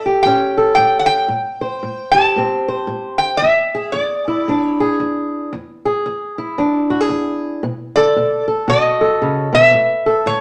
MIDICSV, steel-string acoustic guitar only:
0, 0, Header, 1, 2, 480
1, 0, Start_track
1, 0, Tempo, 527704
1, 1190, Time_signature, 4, 2, 24, 8
1, 9466, End_track
2, 0, Start_track
2, 0, Title_t, "Steel-string acoustic guitar"
2, 0, Program_c, 0, 25
2, 0, Note_on_c, 0, 45, 66
2, 0, Note_on_c, 0, 69, 64
2, 52, Note_on_c, 0, 67, 57
2, 195, Note_off_c, 0, 45, 0
2, 233, Note_on_c, 0, 45, 73
2, 241, Note_on_c, 0, 61, 56
2, 512, Note_off_c, 0, 69, 0
2, 523, Note_on_c, 0, 69, 61
2, 674, Note_off_c, 0, 45, 0
2, 704, Note_on_c, 0, 45, 67
2, 1149, Note_off_c, 0, 45, 0
2, 1168, Note_off_c, 0, 69, 0
2, 1168, Note_on_c, 0, 45, 71
2, 1172, Note_off_c, 0, 61, 0
2, 1172, Note_off_c, 0, 67, 0
2, 1467, Note_on_c, 0, 72, 62
2, 1621, Note_off_c, 0, 45, 0
2, 1662, Note_on_c, 0, 45, 68
2, 1951, Note_on_c, 0, 67, 57
2, 2108, Note_off_c, 0, 45, 0
2, 2148, Note_on_c, 0, 45, 69
2, 2162, Note_on_c, 0, 60, 57
2, 2430, Note_off_c, 0, 72, 0
2, 2441, Note_on_c, 0, 72, 64
2, 2591, Note_off_c, 0, 45, 0
2, 2612, Note_on_c, 0, 45, 73
2, 3063, Note_off_c, 0, 45, 0
2, 3083, Note_off_c, 0, 67, 0
2, 3087, Note_off_c, 0, 72, 0
2, 3093, Note_off_c, 0, 60, 0
2, 3112, Note_on_c, 0, 40, 75
2, 3407, Note_on_c, 0, 68, 62
2, 3553, Note_off_c, 0, 40, 0
2, 3579, Note_on_c, 0, 40, 72
2, 3890, Note_on_c, 0, 64, 56
2, 4027, Note_off_c, 0, 40, 0
2, 4075, Note_on_c, 0, 40, 66
2, 4084, Note_on_c, 0, 62, 59
2, 4358, Note_off_c, 0, 68, 0
2, 4369, Note_on_c, 0, 68, 65
2, 4515, Note_off_c, 0, 40, 0
2, 4546, Note_on_c, 0, 40, 70
2, 4991, Note_off_c, 0, 40, 0
2, 5012, Note_off_c, 0, 68, 0
2, 5013, Note_off_c, 0, 64, 0
2, 5015, Note_off_c, 0, 62, 0
2, 5027, Note_on_c, 0, 40, 74
2, 5325, Note_on_c, 0, 68, 65
2, 5471, Note_off_c, 0, 40, 0
2, 5511, Note_on_c, 0, 40, 71
2, 5805, Note_on_c, 0, 64, 58
2, 5953, Note_off_c, 0, 40, 0
2, 5986, Note_on_c, 0, 40, 73
2, 5989, Note_on_c, 0, 62, 54
2, 6274, Note_off_c, 0, 68, 0
2, 6278, Note_on_c, 0, 66, 62
2, 6372, Note_off_c, 0, 66, 0
2, 6372, Note_on_c, 0, 68, 50
2, 6431, Note_off_c, 0, 40, 0
2, 6450, Note_on_c, 0, 40, 73
2, 6903, Note_off_c, 0, 40, 0
2, 6927, Note_off_c, 0, 62, 0
2, 6930, Note_off_c, 0, 64, 0
2, 6940, Note_on_c, 0, 47, 69
2, 6949, Note_off_c, 0, 68, 0
2, 7249, Note_on_c, 0, 69, 61
2, 7388, Note_off_c, 0, 47, 0
2, 7426, Note_on_c, 0, 47, 65
2, 7707, Note_off_c, 0, 69, 0
2, 7710, Note_on_c, 0, 69, 60
2, 7871, Note_off_c, 0, 47, 0
2, 7892, Note_on_c, 0, 47, 73
2, 7893, Note_on_c, 0, 66, 58
2, 8184, Note_off_c, 0, 69, 0
2, 8195, Note_on_c, 0, 69, 64
2, 8343, Note_off_c, 0, 47, 0
2, 8383, Note_on_c, 0, 49, 62
2, 8661, Note_off_c, 0, 49, 0
2, 8664, Note_on_c, 0, 47, 61
2, 8836, Note_off_c, 0, 66, 0
2, 8844, Note_off_c, 0, 69, 0
2, 8858, Note_on_c, 0, 45, 76
2, 8861, Note_off_c, 0, 47, 0
2, 9152, Note_on_c, 0, 69, 63
2, 9304, Note_off_c, 0, 45, 0
2, 9332, Note_on_c, 0, 45, 73
2, 9466, Note_off_c, 0, 45, 0
2, 9466, Note_off_c, 0, 69, 0
2, 9466, End_track
0, 0, End_of_file